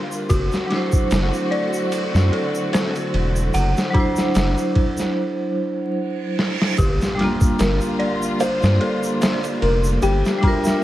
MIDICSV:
0, 0, Header, 1, 9, 480
1, 0, Start_track
1, 0, Tempo, 810811
1, 175, Time_signature, 4, 2, 24, 8
1, 6416, End_track
2, 0, Start_track
2, 0, Title_t, "Synth bell"
2, 0, Program_c, 0, 98
2, 0, Control_c, 0, 64, 127
2, 0, Note_on_c, 0, 67, 72
2, 0, Note_on_c, 0, 72, 70
2, 174, Note_on_c, 0, 66, 102
2, 184, Control_c, 0, 64, 0
2, 185, Note_off_c, 0, 72, 0
2, 188, Note_off_c, 0, 67, 0
2, 298, Control_c, 0, 64, 127
2, 404, Note_off_c, 0, 66, 0
2, 894, Note_on_c, 0, 74, 106
2, 1124, Note_off_c, 0, 74, 0
2, 1376, Note_on_c, 0, 69, 71
2, 1594, Note_off_c, 0, 69, 0
2, 1618, Note_on_c, 0, 72, 74
2, 1846, Note_off_c, 0, 72, 0
2, 2095, Note_on_c, 0, 78, 106
2, 2324, Note_off_c, 0, 78, 0
2, 2333, Note_on_c, 0, 62, 103
2, 2563, Note_off_c, 0, 62, 0
2, 4013, Note_on_c, 0, 67, 100
2, 4024, Control_c, 0, 64, 0
2, 4129, Control_c, 0, 64, 127
2, 4244, Note_off_c, 0, 67, 0
2, 4731, Note_on_c, 0, 74, 101
2, 4963, Note_off_c, 0, 74, 0
2, 5214, Note_on_c, 0, 69, 77
2, 5433, Note_off_c, 0, 69, 0
2, 5453, Note_on_c, 0, 72, 71
2, 5684, Note_off_c, 0, 72, 0
2, 5937, Note_on_c, 0, 79, 106
2, 6166, Note_off_c, 0, 79, 0
2, 6176, Note_on_c, 0, 62, 104
2, 6405, Note_off_c, 0, 62, 0
2, 6416, End_track
3, 0, Start_track
3, 0, Title_t, "Felt piano"
3, 0, Program_c, 1, 0
3, 4494, Note_on_c, 1, 70, 92
3, 4976, Note_on_c, 1, 72, 119
3, 4989, Note_off_c, 1, 70, 0
3, 5432, Note_off_c, 1, 72, 0
3, 5692, Note_on_c, 1, 70, 100
3, 5917, Note_off_c, 1, 70, 0
3, 5933, Note_on_c, 1, 67, 105
3, 6416, Note_off_c, 1, 67, 0
3, 6416, End_track
4, 0, Start_track
4, 0, Title_t, "Vibraphone"
4, 0, Program_c, 2, 11
4, 0, Note_on_c, 2, 55, 80
4, 0, Note_on_c, 2, 62, 75
4, 0, Note_on_c, 2, 65, 75
4, 0, Note_on_c, 2, 70, 97
4, 154, Note_off_c, 2, 55, 0
4, 161, Note_off_c, 2, 62, 0
4, 172, Note_off_c, 2, 65, 0
4, 181, Note_off_c, 2, 70, 0
4, 393, Note_on_c, 2, 54, 73
4, 411, Note_on_c, 2, 62, 69
4, 430, Note_on_c, 2, 64, 66
4, 447, Note_on_c, 2, 72, 82
4, 2298, Note_off_c, 2, 54, 0
4, 2307, Note_off_c, 2, 62, 0
4, 2313, Note_on_c, 2, 54, 86
4, 2317, Note_off_c, 2, 64, 0
4, 2325, Note_off_c, 2, 72, 0
4, 2329, Note_on_c, 2, 62, 75
4, 2347, Note_on_c, 2, 64, 81
4, 2367, Note_on_c, 2, 72, 91
4, 3991, Note_off_c, 2, 54, 0
4, 3999, Note_off_c, 2, 62, 0
4, 4008, Note_off_c, 2, 64, 0
4, 4018, Note_off_c, 2, 72, 0
4, 4231, Note_on_c, 2, 55, 76
4, 4248, Note_on_c, 2, 62, 66
4, 4267, Note_on_c, 2, 65, 68
4, 4285, Note_on_c, 2, 58, 83
4, 6137, Note_off_c, 2, 55, 0
4, 6146, Note_off_c, 2, 62, 0
4, 6148, Note_on_c, 2, 55, 81
4, 6155, Note_off_c, 2, 65, 0
4, 6164, Note_off_c, 2, 58, 0
4, 6164, Note_on_c, 2, 62, 76
4, 6183, Note_on_c, 2, 65, 80
4, 6201, Note_on_c, 2, 70, 90
4, 6416, Note_off_c, 2, 55, 0
4, 6416, Note_off_c, 2, 62, 0
4, 6416, Note_off_c, 2, 65, 0
4, 6416, Note_off_c, 2, 70, 0
4, 6416, End_track
5, 0, Start_track
5, 0, Title_t, "String section"
5, 0, Program_c, 3, 48
5, 0, Note_on_c, 3, 50, 78
5, 0, Note_on_c, 3, 55, 73
5, 0, Note_on_c, 3, 58, 79
5, 0, Note_on_c, 3, 65, 85
5, 153, Note_off_c, 3, 65, 0
5, 154, Note_off_c, 3, 55, 0
5, 154, Note_off_c, 3, 58, 0
5, 157, Note_off_c, 3, 50, 0
5, 172, Note_on_c, 3, 66, 93
5, 173, Note_on_c, 3, 50, 84
5, 175, Note_on_c, 3, 57, 73
5, 176, Note_on_c, 3, 60, 77
5, 3030, Note_off_c, 3, 66, 0
5, 3031, Note_off_c, 3, 50, 0
5, 3031, Note_off_c, 3, 57, 0
5, 3032, Note_off_c, 3, 60, 0
5, 4011, Note_on_c, 3, 55, 79
5, 4013, Note_on_c, 3, 50, 83
5, 4013, Note_on_c, 3, 58, 78
5, 4014, Note_on_c, 3, 65, 92
5, 5915, Note_off_c, 3, 65, 0
5, 5938, Note_on_c, 3, 76, 92
5, 6416, Note_off_c, 3, 50, 0
5, 6416, Note_off_c, 3, 55, 0
5, 6416, Note_off_c, 3, 58, 0
5, 6416, Note_off_c, 3, 76, 0
5, 6416, End_track
6, 0, Start_track
6, 0, Title_t, "Analog synth bass"
6, 0, Program_c, 4, 38
6, 177, Note_on_c, 4, 30, 97
6, 293, Note_off_c, 4, 30, 0
6, 659, Note_on_c, 4, 30, 87
6, 774, Note_off_c, 4, 30, 0
6, 1269, Note_on_c, 4, 42, 86
6, 1363, Note_off_c, 4, 42, 0
6, 1858, Note_on_c, 4, 28, 100
6, 2071, Note_off_c, 4, 28, 0
6, 2096, Note_on_c, 4, 30, 99
6, 2212, Note_off_c, 4, 30, 0
6, 2579, Note_on_c, 4, 30, 86
6, 2693, Note_off_c, 4, 30, 0
6, 4016, Note_on_c, 4, 31, 99
6, 4132, Note_off_c, 4, 31, 0
6, 4498, Note_on_c, 4, 31, 89
6, 4613, Note_off_c, 4, 31, 0
6, 5109, Note_on_c, 4, 43, 90
6, 5203, Note_off_c, 4, 43, 0
6, 5697, Note_on_c, 4, 29, 106
6, 5910, Note_off_c, 4, 29, 0
6, 5935, Note_on_c, 4, 31, 95
6, 6052, Note_off_c, 4, 31, 0
6, 6416, End_track
7, 0, Start_track
7, 0, Title_t, "Impact"
7, 0, Program_c, 5, 103
7, 4014, Note_on_c, 5, 60, 73
7, 5935, Note_off_c, 5, 60, 0
7, 6416, End_track
8, 0, Start_track
8, 0, Title_t, "Reverse cymbal"
8, 0, Program_c, 6, 119
8, 3055, Note_on_c, 6, 60, 81
8, 4015, Note_off_c, 6, 60, 0
8, 6416, End_track
9, 0, Start_track
9, 0, Title_t, "Drums"
9, 69, Note_on_c, 9, 82, 64
9, 129, Note_off_c, 9, 82, 0
9, 175, Note_on_c, 9, 82, 62
9, 177, Note_on_c, 9, 36, 100
9, 177, Note_on_c, 9, 51, 80
9, 234, Note_off_c, 9, 82, 0
9, 236, Note_off_c, 9, 36, 0
9, 236, Note_off_c, 9, 51, 0
9, 309, Note_on_c, 9, 82, 34
9, 319, Note_on_c, 9, 38, 41
9, 368, Note_off_c, 9, 82, 0
9, 378, Note_off_c, 9, 38, 0
9, 418, Note_on_c, 9, 51, 68
9, 426, Note_on_c, 9, 38, 41
9, 477, Note_off_c, 9, 51, 0
9, 486, Note_off_c, 9, 38, 0
9, 546, Note_on_c, 9, 82, 72
9, 549, Note_on_c, 9, 36, 91
9, 605, Note_off_c, 9, 82, 0
9, 608, Note_off_c, 9, 36, 0
9, 656, Note_on_c, 9, 82, 62
9, 657, Note_on_c, 9, 51, 83
9, 665, Note_on_c, 9, 38, 110
9, 715, Note_off_c, 9, 82, 0
9, 716, Note_off_c, 9, 51, 0
9, 724, Note_off_c, 9, 38, 0
9, 790, Note_on_c, 9, 82, 40
9, 849, Note_off_c, 9, 82, 0
9, 899, Note_on_c, 9, 51, 65
9, 958, Note_off_c, 9, 51, 0
9, 1026, Note_on_c, 9, 82, 76
9, 1086, Note_off_c, 9, 82, 0
9, 1135, Note_on_c, 9, 82, 56
9, 1136, Note_on_c, 9, 51, 83
9, 1194, Note_off_c, 9, 82, 0
9, 1195, Note_off_c, 9, 51, 0
9, 1273, Note_on_c, 9, 82, 39
9, 1278, Note_on_c, 9, 38, 56
9, 1332, Note_off_c, 9, 82, 0
9, 1338, Note_off_c, 9, 38, 0
9, 1379, Note_on_c, 9, 51, 69
9, 1439, Note_off_c, 9, 51, 0
9, 1510, Note_on_c, 9, 82, 69
9, 1569, Note_off_c, 9, 82, 0
9, 1617, Note_on_c, 9, 51, 79
9, 1625, Note_on_c, 9, 38, 105
9, 1625, Note_on_c, 9, 82, 57
9, 1676, Note_off_c, 9, 51, 0
9, 1684, Note_off_c, 9, 38, 0
9, 1684, Note_off_c, 9, 82, 0
9, 1748, Note_on_c, 9, 82, 38
9, 1751, Note_on_c, 9, 51, 47
9, 1807, Note_off_c, 9, 82, 0
9, 1810, Note_off_c, 9, 51, 0
9, 1858, Note_on_c, 9, 51, 63
9, 1917, Note_off_c, 9, 51, 0
9, 1989, Note_on_c, 9, 82, 75
9, 2048, Note_off_c, 9, 82, 0
9, 2094, Note_on_c, 9, 82, 60
9, 2098, Note_on_c, 9, 51, 80
9, 2153, Note_off_c, 9, 82, 0
9, 2157, Note_off_c, 9, 51, 0
9, 2231, Note_on_c, 9, 82, 35
9, 2238, Note_on_c, 9, 38, 40
9, 2290, Note_off_c, 9, 82, 0
9, 2297, Note_off_c, 9, 38, 0
9, 2335, Note_on_c, 9, 51, 69
9, 2336, Note_on_c, 9, 36, 95
9, 2394, Note_off_c, 9, 51, 0
9, 2395, Note_off_c, 9, 36, 0
9, 2464, Note_on_c, 9, 82, 72
9, 2476, Note_on_c, 9, 38, 41
9, 2523, Note_off_c, 9, 82, 0
9, 2536, Note_off_c, 9, 38, 0
9, 2575, Note_on_c, 9, 82, 62
9, 2576, Note_on_c, 9, 51, 80
9, 2585, Note_on_c, 9, 38, 108
9, 2634, Note_off_c, 9, 82, 0
9, 2636, Note_off_c, 9, 51, 0
9, 2644, Note_off_c, 9, 38, 0
9, 2709, Note_on_c, 9, 82, 39
9, 2768, Note_off_c, 9, 82, 0
9, 2815, Note_on_c, 9, 36, 94
9, 2815, Note_on_c, 9, 51, 70
9, 2874, Note_off_c, 9, 51, 0
9, 2875, Note_off_c, 9, 36, 0
9, 2944, Note_on_c, 9, 82, 82
9, 2956, Note_on_c, 9, 38, 38
9, 3003, Note_off_c, 9, 82, 0
9, 3016, Note_off_c, 9, 38, 0
9, 3782, Note_on_c, 9, 38, 60
9, 3842, Note_off_c, 9, 38, 0
9, 3917, Note_on_c, 9, 38, 70
9, 3976, Note_off_c, 9, 38, 0
9, 4013, Note_on_c, 9, 82, 56
9, 4015, Note_on_c, 9, 36, 105
9, 4015, Note_on_c, 9, 51, 87
9, 4072, Note_off_c, 9, 82, 0
9, 4074, Note_off_c, 9, 36, 0
9, 4075, Note_off_c, 9, 51, 0
9, 4151, Note_on_c, 9, 82, 33
9, 4158, Note_on_c, 9, 38, 38
9, 4211, Note_off_c, 9, 82, 0
9, 4217, Note_off_c, 9, 38, 0
9, 4257, Note_on_c, 9, 51, 69
9, 4265, Note_on_c, 9, 38, 43
9, 4316, Note_off_c, 9, 51, 0
9, 4325, Note_off_c, 9, 38, 0
9, 4387, Note_on_c, 9, 36, 98
9, 4387, Note_on_c, 9, 82, 72
9, 4446, Note_off_c, 9, 36, 0
9, 4446, Note_off_c, 9, 82, 0
9, 4495, Note_on_c, 9, 51, 80
9, 4495, Note_on_c, 9, 82, 65
9, 4503, Note_on_c, 9, 38, 109
9, 4554, Note_off_c, 9, 51, 0
9, 4554, Note_off_c, 9, 82, 0
9, 4562, Note_off_c, 9, 38, 0
9, 4624, Note_on_c, 9, 82, 46
9, 4683, Note_off_c, 9, 82, 0
9, 4735, Note_on_c, 9, 51, 71
9, 4794, Note_off_c, 9, 51, 0
9, 4868, Note_on_c, 9, 82, 84
9, 4928, Note_off_c, 9, 82, 0
9, 4973, Note_on_c, 9, 82, 73
9, 4974, Note_on_c, 9, 51, 86
9, 5032, Note_off_c, 9, 82, 0
9, 5034, Note_off_c, 9, 51, 0
9, 5106, Note_on_c, 9, 82, 35
9, 5115, Note_on_c, 9, 38, 56
9, 5166, Note_off_c, 9, 82, 0
9, 5174, Note_off_c, 9, 38, 0
9, 5214, Note_on_c, 9, 51, 68
9, 5273, Note_off_c, 9, 51, 0
9, 5348, Note_on_c, 9, 82, 83
9, 5407, Note_off_c, 9, 82, 0
9, 5456, Note_on_c, 9, 82, 63
9, 5457, Note_on_c, 9, 51, 80
9, 5465, Note_on_c, 9, 38, 114
9, 5515, Note_off_c, 9, 82, 0
9, 5516, Note_off_c, 9, 51, 0
9, 5524, Note_off_c, 9, 38, 0
9, 5588, Note_on_c, 9, 51, 47
9, 5589, Note_on_c, 9, 82, 43
9, 5647, Note_off_c, 9, 51, 0
9, 5648, Note_off_c, 9, 82, 0
9, 5697, Note_on_c, 9, 51, 67
9, 5756, Note_off_c, 9, 51, 0
9, 5827, Note_on_c, 9, 82, 81
9, 5886, Note_off_c, 9, 82, 0
9, 5933, Note_on_c, 9, 82, 60
9, 5935, Note_on_c, 9, 51, 79
9, 5993, Note_off_c, 9, 82, 0
9, 5994, Note_off_c, 9, 51, 0
9, 6067, Note_on_c, 9, 82, 36
9, 6076, Note_on_c, 9, 38, 43
9, 6127, Note_off_c, 9, 82, 0
9, 6136, Note_off_c, 9, 38, 0
9, 6172, Note_on_c, 9, 51, 69
9, 6175, Note_on_c, 9, 36, 92
9, 6231, Note_off_c, 9, 51, 0
9, 6234, Note_off_c, 9, 36, 0
9, 6301, Note_on_c, 9, 82, 82
9, 6314, Note_on_c, 9, 38, 44
9, 6360, Note_off_c, 9, 82, 0
9, 6373, Note_off_c, 9, 38, 0
9, 6416, End_track
0, 0, End_of_file